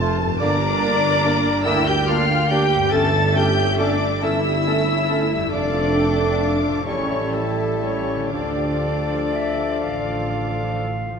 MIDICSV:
0, 0, Header, 1, 13, 480
1, 0, Start_track
1, 0, Key_signature, -1, "minor"
1, 0, Tempo, 839161
1, 227, Time_signature, 6, 3, 24, 8
1, 1674, Tempo, 865801
1, 3594, Tempo, 940439
1, 4074, Tempo, 996678
1, 5935, End_track
2, 0, Start_track
2, 0, Title_t, "Violin section"
2, 0, Program_c, 0, 48
2, 227, Note_on_c, 0, 86, 102
2, 926, Note_off_c, 0, 86, 0
2, 946, Note_on_c, 0, 88, 99
2, 1068, Note_off_c, 0, 88, 0
2, 1072, Note_on_c, 0, 91, 95
2, 1190, Note_on_c, 0, 89, 90
2, 1192, Note_off_c, 0, 91, 0
2, 1425, Note_on_c, 0, 91, 86
2, 1432, Note_off_c, 0, 89, 0
2, 1670, Note_on_c, 0, 93, 92
2, 1671, Note_off_c, 0, 91, 0
2, 1910, Note_off_c, 0, 93, 0
2, 1913, Note_on_c, 0, 91, 92
2, 2151, Note_on_c, 0, 86, 86
2, 2154, Note_off_c, 0, 91, 0
2, 2391, Note_off_c, 0, 86, 0
2, 2405, Note_on_c, 0, 88, 85
2, 3114, Note_off_c, 0, 88, 0
2, 3115, Note_on_c, 0, 86, 85
2, 3819, Note_off_c, 0, 86, 0
2, 3837, Note_on_c, 0, 85, 73
2, 4073, Note_off_c, 0, 85, 0
2, 4083, Note_on_c, 0, 81, 62
2, 4313, Note_off_c, 0, 81, 0
2, 4317, Note_on_c, 0, 85, 56
2, 4551, Note_on_c, 0, 86, 54
2, 4554, Note_off_c, 0, 85, 0
2, 5736, Note_off_c, 0, 86, 0
2, 5935, End_track
3, 0, Start_track
3, 0, Title_t, "Violin section"
3, 0, Program_c, 1, 48
3, 0, Note_on_c, 1, 81, 86
3, 220, Note_off_c, 1, 81, 0
3, 242, Note_on_c, 1, 82, 96
3, 942, Note_off_c, 1, 82, 0
3, 957, Note_on_c, 1, 79, 78
3, 1679, Note_off_c, 1, 79, 0
3, 1683, Note_on_c, 1, 76, 79
3, 2387, Note_off_c, 1, 76, 0
3, 2401, Note_on_c, 1, 76, 65
3, 3097, Note_off_c, 1, 76, 0
3, 3120, Note_on_c, 1, 77, 62
3, 3352, Note_off_c, 1, 77, 0
3, 3352, Note_on_c, 1, 79, 57
3, 3596, Note_off_c, 1, 79, 0
3, 3598, Note_on_c, 1, 77, 53
3, 3832, Note_off_c, 1, 77, 0
3, 3832, Note_on_c, 1, 76, 56
3, 4551, Note_off_c, 1, 76, 0
3, 4551, Note_on_c, 1, 77, 46
3, 5615, Note_off_c, 1, 77, 0
3, 5935, End_track
4, 0, Start_track
4, 0, Title_t, "Flute"
4, 0, Program_c, 2, 73
4, 230, Note_on_c, 2, 74, 95
4, 961, Note_on_c, 2, 76, 90
4, 970, Note_off_c, 2, 74, 0
4, 1071, Note_off_c, 2, 76, 0
4, 1074, Note_on_c, 2, 79, 82
4, 1196, Note_on_c, 2, 77, 86
4, 1204, Note_off_c, 2, 79, 0
4, 1434, Note_on_c, 2, 79, 89
4, 1442, Note_off_c, 2, 77, 0
4, 1672, Note_on_c, 2, 81, 85
4, 1681, Note_off_c, 2, 79, 0
4, 1914, Note_on_c, 2, 79, 74
4, 1922, Note_off_c, 2, 81, 0
4, 2153, Note_on_c, 2, 74, 73
4, 2161, Note_off_c, 2, 79, 0
4, 2398, Note_on_c, 2, 76, 77
4, 2406, Note_off_c, 2, 74, 0
4, 3110, Note_off_c, 2, 76, 0
4, 3113, Note_on_c, 2, 74, 75
4, 3671, Note_off_c, 2, 74, 0
4, 3836, Note_on_c, 2, 73, 62
4, 4077, Note_on_c, 2, 69, 56
4, 4084, Note_off_c, 2, 73, 0
4, 4315, Note_on_c, 2, 73, 50
4, 4322, Note_off_c, 2, 69, 0
4, 4553, Note_off_c, 2, 73, 0
4, 4559, Note_on_c, 2, 74, 53
4, 5740, Note_off_c, 2, 74, 0
4, 5935, End_track
5, 0, Start_track
5, 0, Title_t, "Cor anglais"
5, 0, Program_c, 3, 69
5, 7, Note_on_c, 3, 72, 59
5, 99, Note_off_c, 3, 72, 0
5, 228, Note_on_c, 3, 74, 75
5, 320, Note_off_c, 3, 74, 0
5, 467, Note_on_c, 3, 74, 63
5, 559, Note_off_c, 3, 74, 0
5, 700, Note_on_c, 3, 74, 62
5, 791, Note_off_c, 3, 74, 0
5, 943, Note_on_c, 3, 74, 60
5, 1034, Note_off_c, 3, 74, 0
5, 1189, Note_on_c, 3, 74, 59
5, 1281, Note_off_c, 3, 74, 0
5, 1431, Note_on_c, 3, 74, 59
5, 1523, Note_off_c, 3, 74, 0
5, 1668, Note_on_c, 3, 69, 74
5, 1757, Note_off_c, 3, 69, 0
5, 1900, Note_on_c, 3, 69, 59
5, 1988, Note_off_c, 3, 69, 0
5, 2151, Note_on_c, 3, 69, 59
5, 2240, Note_off_c, 3, 69, 0
5, 2393, Note_on_c, 3, 69, 54
5, 2481, Note_off_c, 3, 69, 0
5, 2635, Note_on_c, 3, 69, 55
5, 2724, Note_off_c, 3, 69, 0
5, 2869, Note_on_c, 3, 69, 52
5, 2957, Note_off_c, 3, 69, 0
5, 3104, Note_on_c, 3, 69, 65
5, 3807, Note_off_c, 3, 69, 0
5, 3831, Note_on_c, 3, 69, 47
5, 4536, Note_off_c, 3, 69, 0
5, 4554, Note_on_c, 3, 69, 48
5, 5805, Note_off_c, 3, 69, 0
5, 5935, End_track
6, 0, Start_track
6, 0, Title_t, "Cello section"
6, 0, Program_c, 4, 48
6, 225, Note_on_c, 4, 62, 93
6, 925, Note_off_c, 4, 62, 0
6, 950, Note_on_c, 4, 64, 93
6, 1068, Note_on_c, 4, 67, 84
6, 1070, Note_off_c, 4, 64, 0
6, 1190, Note_off_c, 4, 67, 0
6, 1194, Note_on_c, 4, 65, 87
6, 1433, Note_on_c, 4, 67, 81
6, 1434, Note_off_c, 4, 65, 0
6, 1671, Note_off_c, 4, 67, 0
6, 1676, Note_on_c, 4, 69, 84
6, 1913, Note_off_c, 4, 69, 0
6, 1913, Note_on_c, 4, 67, 85
6, 2155, Note_off_c, 4, 67, 0
6, 2156, Note_on_c, 4, 62, 79
6, 2394, Note_off_c, 4, 62, 0
6, 2408, Note_on_c, 4, 64, 70
6, 3115, Note_off_c, 4, 64, 0
6, 3115, Note_on_c, 4, 62, 81
6, 3819, Note_off_c, 4, 62, 0
6, 3837, Note_on_c, 4, 61, 66
6, 4077, Note_off_c, 4, 61, 0
6, 4078, Note_on_c, 4, 57, 54
6, 4311, Note_off_c, 4, 57, 0
6, 4313, Note_on_c, 4, 61, 50
6, 4552, Note_off_c, 4, 61, 0
6, 4554, Note_on_c, 4, 62, 51
6, 5737, Note_off_c, 4, 62, 0
6, 5935, End_track
7, 0, Start_track
7, 0, Title_t, "French horn section"
7, 0, Program_c, 5, 60
7, 239, Note_on_c, 5, 62, 87
7, 932, Note_off_c, 5, 62, 0
7, 949, Note_on_c, 5, 64, 86
7, 1070, Note_off_c, 5, 64, 0
7, 1071, Note_on_c, 5, 67, 77
7, 1191, Note_off_c, 5, 67, 0
7, 1198, Note_on_c, 5, 65, 85
7, 1434, Note_on_c, 5, 67, 89
7, 1436, Note_off_c, 5, 65, 0
7, 1671, Note_off_c, 5, 67, 0
7, 1676, Note_on_c, 5, 69, 82
7, 1910, Note_on_c, 5, 67, 81
7, 1912, Note_off_c, 5, 69, 0
7, 2153, Note_off_c, 5, 67, 0
7, 2162, Note_on_c, 5, 62, 81
7, 2398, Note_on_c, 5, 64, 69
7, 2402, Note_off_c, 5, 62, 0
7, 3096, Note_off_c, 5, 64, 0
7, 3113, Note_on_c, 5, 62, 74
7, 3818, Note_off_c, 5, 62, 0
7, 3826, Note_on_c, 5, 61, 59
7, 4005, Note_off_c, 5, 61, 0
7, 4079, Note_on_c, 5, 57, 50
7, 4307, Note_off_c, 5, 57, 0
7, 4312, Note_on_c, 5, 61, 51
7, 4547, Note_off_c, 5, 61, 0
7, 4550, Note_on_c, 5, 62, 49
7, 5755, Note_off_c, 5, 62, 0
7, 5935, End_track
8, 0, Start_track
8, 0, Title_t, "Clarinet"
8, 0, Program_c, 6, 71
8, 3, Note_on_c, 6, 65, 64
8, 95, Note_off_c, 6, 65, 0
8, 240, Note_on_c, 6, 62, 68
8, 331, Note_off_c, 6, 62, 0
8, 470, Note_on_c, 6, 62, 62
8, 562, Note_off_c, 6, 62, 0
8, 713, Note_on_c, 6, 62, 60
8, 804, Note_off_c, 6, 62, 0
8, 956, Note_on_c, 6, 62, 65
8, 1047, Note_off_c, 6, 62, 0
8, 1201, Note_on_c, 6, 62, 66
8, 1293, Note_off_c, 6, 62, 0
8, 1438, Note_on_c, 6, 62, 60
8, 1530, Note_off_c, 6, 62, 0
8, 1677, Note_on_c, 6, 61, 66
8, 1766, Note_off_c, 6, 61, 0
8, 1911, Note_on_c, 6, 61, 60
8, 2000, Note_off_c, 6, 61, 0
8, 2154, Note_on_c, 6, 61, 60
8, 2243, Note_off_c, 6, 61, 0
8, 2392, Note_on_c, 6, 61, 59
8, 2480, Note_off_c, 6, 61, 0
8, 2641, Note_on_c, 6, 61, 56
8, 2729, Note_off_c, 6, 61, 0
8, 2880, Note_on_c, 6, 61, 55
8, 2969, Note_off_c, 6, 61, 0
8, 3117, Note_on_c, 6, 62, 63
8, 3839, Note_on_c, 6, 64, 54
8, 3846, Note_off_c, 6, 62, 0
8, 4552, Note_off_c, 6, 64, 0
8, 4555, Note_on_c, 6, 62, 44
8, 5026, Note_off_c, 6, 62, 0
8, 5037, Note_on_c, 6, 76, 57
8, 5272, Note_on_c, 6, 77, 53
8, 5279, Note_off_c, 6, 76, 0
8, 5935, Note_off_c, 6, 77, 0
8, 5935, End_track
9, 0, Start_track
9, 0, Title_t, "Harp"
9, 0, Program_c, 7, 46
9, 0, Note_on_c, 7, 41, 68
9, 0, Note_on_c, 7, 60, 54
9, 0, Note_on_c, 7, 65, 57
9, 0, Note_on_c, 7, 69, 56
9, 132, Note_on_c, 7, 43, 66
9, 158, Note_on_c, 7, 58, 56
9, 183, Note_on_c, 7, 62, 55
9, 194, Note_off_c, 7, 41, 0
9, 209, Note_off_c, 7, 60, 0
9, 210, Note_on_c, 7, 67, 54
9, 220, Note_off_c, 7, 65, 0
9, 233, Note_off_c, 7, 69, 0
9, 1570, Note_off_c, 7, 43, 0
9, 1577, Note_on_c, 7, 43, 65
9, 1600, Note_on_c, 7, 57, 51
9, 1627, Note_on_c, 7, 61, 54
9, 1655, Note_on_c, 7, 64, 51
9, 1660, Note_off_c, 7, 58, 0
9, 1673, Note_off_c, 7, 62, 0
9, 2417, Note_off_c, 7, 67, 0
9, 3017, Note_on_c, 7, 41, 53
9, 3036, Note_off_c, 7, 57, 0
9, 3042, Note_on_c, 7, 57, 45
9, 3070, Note_on_c, 7, 62, 45
9, 3081, Note_off_c, 7, 43, 0
9, 3094, Note_on_c, 7, 65, 48
9, 3105, Note_off_c, 7, 61, 0
9, 3119, Note_off_c, 7, 64, 0
9, 3740, Note_on_c, 7, 45, 50
9, 3760, Note_off_c, 7, 57, 0
9, 3766, Note_on_c, 7, 57, 39
9, 3790, Note_on_c, 7, 64, 40
9, 3807, Note_off_c, 7, 41, 0
9, 3814, Note_on_c, 7, 67, 37
9, 3831, Note_off_c, 7, 62, 0
9, 3842, Note_off_c, 7, 65, 0
9, 4470, Note_on_c, 7, 50, 38
9, 4487, Note_off_c, 7, 57, 0
9, 4493, Note_on_c, 7, 57, 33
9, 4512, Note_on_c, 7, 62, 32
9, 4527, Note_off_c, 7, 45, 0
9, 4537, Note_on_c, 7, 65, 33
9, 4550, Note_off_c, 7, 64, 0
9, 4562, Note_off_c, 7, 67, 0
9, 5935, Note_off_c, 7, 50, 0
9, 5935, Note_off_c, 7, 57, 0
9, 5935, Note_off_c, 7, 62, 0
9, 5935, Note_off_c, 7, 65, 0
9, 5935, End_track
10, 0, Start_track
10, 0, Title_t, "Bassoon"
10, 0, Program_c, 8, 70
10, 9, Note_on_c, 8, 57, 63
10, 100, Note_off_c, 8, 57, 0
10, 238, Note_on_c, 8, 58, 70
10, 329, Note_off_c, 8, 58, 0
10, 475, Note_on_c, 8, 58, 61
10, 567, Note_off_c, 8, 58, 0
10, 718, Note_on_c, 8, 58, 61
10, 809, Note_off_c, 8, 58, 0
10, 954, Note_on_c, 8, 58, 67
10, 1045, Note_off_c, 8, 58, 0
10, 1193, Note_on_c, 8, 58, 59
10, 1284, Note_off_c, 8, 58, 0
10, 1442, Note_on_c, 8, 58, 59
10, 1534, Note_off_c, 8, 58, 0
10, 1684, Note_on_c, 8, 57, 66
10, 1772, Note_off_c, 8, 57, 0
10, 1915, Note_on_c, 8, 57, 58
10, 2004, Note_off_c, 8, 57, 0
10, 2161, Note_on_c, 8, 57, 59
10, 2250, Note_off_c, 8, 57, 0
10, 2402, Note_on_c, 8, 57, 63
10, 2491, Note_off_c, 8, 57, 0
10, 2642, Note_on_c, 8, 57, 55
10, 2731, Note_off_c, 8, 57, 0
10, 2885, Note_on_c, 8, 57, 53
10, 2974, Note_off_c, 8, 57, 0
10, 3117, Note_on_c, 8, 57, 58
10, 3813, Note_off_c, 8, 57, 0
10, 3839, Note_on_c, 8, 55, 54
10, 4540, Note_off_c, 8, 55, 0
10, 4557, Note_on_c, 8, 53, 41
10, 5807, Note_off_c, 8, 53, 0
10, 5935, End_track
11, 0, Start_track
11, 0, Title_t, "Viola section"
11, 0, Program_c, 10, 48
11, 3, Note_on_c, 10, 65, 60
11, 5, Note_on_c, 10, 60, 57
11, 107, Note_off_c, 10, 65, 0
11, 108, Note_off_c, 10, 60, 0
11, 115, Note_on_c, 10, 69, 63
11, 116, Note_on_c, 10, 57, 62
11, 223, Note_on_c, 10, 70, 72
11, 226, Note_on_c, 10, 50, 70
11, 229, Note_off_c, 10, 57, 0
11, 229, Note_off_c, 10, 69, 0
11, 335, Note_off_c, 10, 50, 0
11, 337, Note_on_c, 10, 55, 63
11, 455, Note_on_c, 10, 58, 65
11, 459, Note_off_c, 10, 55, 0
11, 573, Note_on_c, 10, 62, 66
11, 579, Note_off_c, 10, 58, 0
11, 700, Note_off_c, 10, 62, 0
11, 700, Note_on_c, 10, 58, 64
11, 824, Note_off_c, 10, 58, 0
11, 825, Note_on_c, 10, 55, 62
11, 947, Note_off_c, 10, 55, 0
11, 951, Note_on_c, 10, 50, 70
11, 1071, Note_off_c, 10, 50, 0
11, 1076, Note_on_c, 10, 55, 68
11, 1187, Note_on_c, 10, 58, 65
11, 1194, Note_off_c, 10, 55, 0
11, 1309, Note_off_c, 10, 58, 0
11, 1311, Note_on_c, 10, 62, 63
11, 1432, Note_off_c, 10, 62, 0
11, 1443, Note_on_c, 10, 58, 61
11, 1557, Note_on_c, 10, 55, 62
11, 1559, Note_off_c, 10, 58, 0
11, 1650, Note_off_c, 10, 70, 0
11, 1677, Note_off_c, 10, 55, 0
11, 1678, Note_on_c, 10, 52, 67
11, 1680, Note_on_c, 10, 69, 72
11, 1786, Note_off_c, 10, 52, 0
11, 1795, Note_on_c, 10, 55, 59
11, 1913, Note_off_c, 10, 55, 0
11, 1918, Note_on_c, 10, 57, 59
11, 2035, Note_off_c, 10, 57, 0
11, 2039, Note_on_c, 10, 61, 58
11, 2151, Note_on_c, 10, 57, 59
11, 2157, Note_off_c, 10, 61, 0
11, 2274, Note_off_c, 10, 57, 0
11, 2277, Note_on_c, 10, 55, 59
11, 2398, Note_off_c, 10, 55, 0
11, 2403, Note_on_c, 10, 52, 64
11, 2521, Note_off_c, 10, 52, 0
11, 2521, Note_on_c, 10, 55, 58
11, 2639, Note_off_c, 10, 55, 0
11, 2642, Note_on_c, 10, 57, 57
11, 2759, Note_off_c, 10, 57, 0
11, 2766, Note_on_c, 10, 61, 62
11, 2877, Note_on_c, 10, 57, 58
11, 2879, Note_off_c, 10, 61, 0
11, 2990, Note_on_c, 10, 55, 57
11, 2993, Note_off_c, 10, 57, 0
11, 3107, Note_on_c, 10, 50, 58
11, 3109, Note_off_c, 10, 55, 0
11, 3218, Note_off_c, 10, 50, 0
11, 3233, Note_on_c, 10, 53, 51
11, 3347, Note_on_c, 10, 57, 54
11, 3350, Note_off_c, 10, 53, 0
11, 3469, Note_off_c, 10, 57, 0
11, 3472, Note_on_c, 10, 53, 50
11, 3595, Note_off_c, 10, 53, 0
11, 3598, Note_on_c, 10, 50, 51
11, 3713, Note_off_c, 10, 50, 0
11, 3714, Note_on_c, 10, 53, 47
11, 3812, Note_off_c, 10, 69, 0
11, 3832, Note_off_c, 10, 53, 0
11, 3842, Note_on_c, 10, 49, 52
11, 3845, Note_on_c, 10, 67, 54
11, 3949, Note_off_c, 10, 49, 0
11, 3963, Note_on_c, 10, 52, 47
11, 4079, Note_off_c, 10, 52, 0
11, 4089, Note_on_c, 10, 55, 44
11, 4198, Note_off_c, 10, 55, 0
11, 4204, Note_on_c, 10, 57, 45
11, 4316, Note_off_c, 10, 57, 0
11, 4325, Note_on_c, 10, 55, 40
11, 4437, Note_off_c, 10, 55, 0
11, 4446, Note_on_c, 10, 52, 41
11, 4559, Note_off_c, 10, 52, 0
11, 4569, Note_on_c, 10, 50, 42
11, 4673, Note_off_c, 10, 50, 0
11, 4680, Note_on_c, 10, 53, 36
11, 4797, Note_off_c, 10, 53, 0
11, 4807, Note_on_c, 10, 57, 39
11, 4921, Note_off_c, 10, 57, 0
11, 4926, Note_on_c, 10, 53, 37
11, 5040, Note_off_c, 10, 53, 0
11, 5050, Note_on_c, 10, 50, 36
11, 5161, Note_off_c, 10, 50, 0
11, 5178, Note_on_c, 10, 53, 34
11, 5260, Note_off_c, 10, 67, 0
11, 5285, Note_off_c, 10, 53, 0
11, 5291, Note_on_c, 10, 65, 39
11, 5294, Note_on_c, 10, 57, 36
11, 5402, Note_off_c, 10, 57, 0
11, 5420, Note_on_c, 10, 53, 33
11, 5526, Note_off_c, 10, 53, 0
11, 5536, Note_on_c, 10, 50, 33
11, 5645, Note_off_c, 10, 50, 0
11, 5648, Note_on_c, 10, 53, 35
11, 5762, Note_off_c, 10, 53, 0
11, 5771, Note_on_c, 10, 57, 35
11, 5882, Note_on_c, 10, 53, 34
11, 5883, Note_off_c, 10, 57, 0
11, 5896, Note_off_c, 10, 65, 0
11, 5935, Note_off_c, 10, 53, 0
11, 5935, End_track
12, 0, Start_track
12, 0, Title_t, "Double bass section"
12, 0, Program_c, 11, 48
12, 0, Note_on_c, 11, 29, 75
12, 218, Note_off_c, 11, 29, 0
12, 235, Note_on_c, 11, 31, 83
12, 831, Note_off_c, 11, 31, 0
12, 955, Note_on_c, 11, 38, 74
12, 1557, Note_off_c, 11, 38, 0
12, 1677, Note_on_c, 11, 31, 75
12, 2277, Note_off_c, 11, 31, 0
12, 2404, Note_on_c, 11, 31, 73
12, 2995, Note_off_c, 11, 31, 0
12, 3116, Note_on_c, 11, 29, 63
12, 3714, Note_off_c, 11, 29, 0
12, 3837, Note_on_c, 11, 33, 57
12, 4432, Note_off_c, 11, 33, 0
12, 4551, Note_on_c, 11, 38, 45
12, 5153, Note_off_c, 11, 38, 0
12, 5280, Note_on_c, 11, 33, 45
12, 5879, Note_off_c, 11, 33, 0
12, 5935, End_track
13, 0, Start_track
13, 0, Title_t, "Tuba"
13, 0, Program_c, 12, 58
13, 0, Note_on_c, 12, 29, 80
13, 214, Note_off_c, 12, 29, 0
13, 236, Note_on_c, 12, 31, 85
13, 832, Note_off_c, 12, 31, 0
13, 953, Note_on_c, 12, 38, 87
13, 1556, Note_off_c, 12, 38, 0
13, 1673, Note_on_c, 12, 31, 87
13, 2275, Note_off_c, 12, 31, 0
13, 2400, Note_on_c, 12, 31, 77
13, 2993, Note_off_c, 12, 31, 0
13, 3114, Note_on_c, 12, 29, 75
13, 3713, Note_off_c, 12, 29, 0
13, 3836, Note_on_c, 12, 33, 55
13, 4432, Note_off_c, 12, 33, 0
13, 4549, Note_on_c, 12, 38, 49
13, 5152, Note_off_c, 12, 38, 0
13, 5275, Note_on_c, 12, 33, 43
13, 5876, Note_off_c, 12, 33, 0
13, 5935, End_track
0, 0, End_of_file